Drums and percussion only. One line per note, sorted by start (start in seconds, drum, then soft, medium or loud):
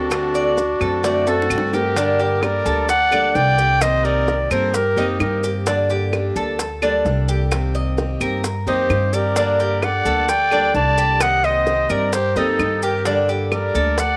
0.11 high bongo medium
0.11 claves medium
0.11 maracas medium
0.35 high bongo soft
0.35 maracas medium
0.57 high bongo medium
0.57 maracas medium
0.81 claves medium
0.81 maracas soft
1.04 high bongo medium
1.04 maracas medium
1.27 high bongo medium
1.27 maracas medium
1.42 low bongo medium
1.50 claves medium
1.50 maracas medium
1.58 low bongo medium
1.73 low bongo medium
1.73 maracas soft
1.97 high bongo medium
1.97 maracas medium
2.19 high bongo soft
2.19 maracas soft
2.43 high bongo medium
2.43 claves medium
2.43 maracas soft
2.66 maracas medium
2.89 high bongo medium
2.89 maracas medium
3.12 high bongo soft
3.12 claves medium
3.12 maracas soft
3.35 high bongo soft
3.35 low bongo medium
3.35 maracas soft
3.58 high bongo soft
3.58 maracas medium
3.81 high bongo medium
3.81 claves medium
3.81 maracas loud
4.05 high bongo soft
4.05 maracas soft
4.28 high bongo medium
4.28 maracas soft
4.51 claves medium
4.51 maracas medium
4.74 high bongo medium
4.74 maracas medium
4.97 high bongo soft
4.97 maracas soft
5.20 high bongo soft
5.20 low bongo medium
5.20 claves medium
5.20 maracas soft
5.43 high bongo soft
5.43 maracas medium
5.66 high bongo medium
5.66 maracas medium
5.89 high bongo soft
5.89 maracas soft
6.13 high bongo medium
6.13 claves medium
6.13 maracas soft
6.36 maracas medium
6.59 high bongo medium
6.59 maracas medium
6.82 high bongo soft
6.82 claves medium
6.82 maracas soft
7.06 high bongo soft
7.06 low bongo medium
7.06 maracas soft
7.28 high bongo soft
7.28 maracas medium
7.51 high bongo medium
7.51 claves medium
7.51 maracas medium
7.75 high bongo soft
7.75 maracas soft
7.98 high bongo medium
7.98 maracas soft
8.21 claves medium
8.21 maracas medium
8.44 high bongo medium
8.44 maracas medium
8.67 high bongo soft
8.67 maracas soft
8.90 high bongo soft
8.90 low bongo medium
8.90 claves medium
8.90 maracas soft
9.13 high bongo soft
9.13 maracas medium
9.36 high bongo medium
9.36 maracas loud
9.59 high bongo soft
9.59 maracas soft
9.82 high bongo medium
9.82 claves medium
9.82 maracas soft
10.06 maracas medium
10.29 high bongo medium
10.29 maracas medium
10.51 high bongo soft
10.51 claves medium
10.51 maracas soft
10.75 high bongo soft
10.75 low bongo medium
10.75 maracas soft
10.98 high bongo soft
10.98 maracas medium
11.21 high bongo medium
11.21 claves medium
11.21 maracas loud
11.44 high bongo soft
11.44 maracas soft
11.67 high bongo medium
11.67 maracas soft
11.90 claves medium
11.90 maracas medium
12.13 high bongo medium
12.13 maracas medium
12.36 high bongo soft
12.36 maracas soft
12.59 high bongo soft
12.59 low bongo medium
12.59 claves medium
12.59 maracas soft
12.82 high bongo soft
12.82 maracas medium
13.05 high bongo medium
13.05 maracas medium
13.28 high bongo soft
13.28 maracas soft
13.52 high bongo medium
13.52 claves medium
13.52 maracas soft
13.75 maracas medium
13.98 high bongo medium
13.98 maracas medium